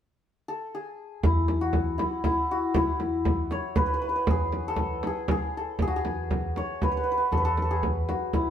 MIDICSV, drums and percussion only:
0, 0, Header, 1, 2, 480
1, 0, Start_track
1, 0, Tempo, 506329
1, 1178, Time_signature, 3, 2, 24, 8
1, 8059, End_track
2, 0, Start_track
2, 0, Title_t, "Frame drum"
2, 1170, Note_on_c, 9, 64, 91
2, 1265, Note_off_c, 9, 64, 0
2, 1406, Note_on_c, 9, 64, 60
2, 1501, Note_off_c, 9, 64, 0
2, 1639, Note_on_c, 9, 64, 76
2, 1734, Note_off_c, 9, 64, 0
2, 1890, Note_on_c, 9, 64, 67
2, 1985, Note_off_c, 9, 64, 0
2, 2122, Note_on_c, 9, 64, 79
2, 2217, Note_off_c, 9, 64, 0
2, 2602, Note_on_c, 9, 64, 91
2, 2697, Note_off_c, 9, 64, 0
2, 2842, Note_on_c, 9, 64, 61
2, 2937, Note_off_c, 9, 64, 0
2, 3084, Note_on_c, 9, 64, 84
2, 3178, Note_off_c, 9, 64, 0
2, 3326, Note_on_c, 9, 64, 60
2, 3421, Note_off_c, 9, 64, 0
2, 3562, Note_on_c, 9, 64, 87
2, 3657, Note_off_c, 9, 64, 0
2, 4048, Note_on_c, 9, 64, 92
2, 4143, Note_off_c, 9, 64, 0
2, 4289, Note_on_c, 9, 64, 55
2, 4384, Note_off_c, 9, 64, 0
2, 4516, Note_on_c, 9, 64, 80
2, 4611, Note_off_c, 9, 64, 0
2, 4768, Note_on_c, 9, 64, 70
2, 4863, Note_off_c, 9, 64, 0
2, 5007, Note_on_c, 9, 64, 88
2, 5102, Note_off_c, 9, 64, 0
2, 5486, Note_on_c, 9, 64, 82
2, 5581, Note_off_c, 9, 64, 0
2, 5734, Note_on_c, 9, 64, 61
2, 5828, Note_off_c, 9, 64, 0
2, 5978, Note_on_c, 9, 64, 79
2, 6073, Note_off_c, 9, 64, 0
2, 6220, Note_on_c, 9, 64, 58
2, 6315, Note_off_c, 9, 64, 0
2, 6462, Note_on_c, 9, 64, 76
2, 6557, Note_off_c, 9, 64, 0
2, 6945, Note_on_c, 9, 64, 66
2, 7039, Note_off_c, 9, 64, 0
2, 7181, Note_on_c, 9, 64, 56
2, 7276, Note_off_c, 9, 64, 0
2, 7423, Note_on_c, 9, 64, 73
2, 7518, Note_off_c, 9, 64, 0
2, 7666, Note_on_c, 9, 64, 59
2, 7761, Note_off_c, 9, 64, 0
2, 7901, Note_on_c, 9, 64, 75
2, 7996, Note_off_c, 9, 64, 0
2, 8059, End_track
0, 0, End_of_file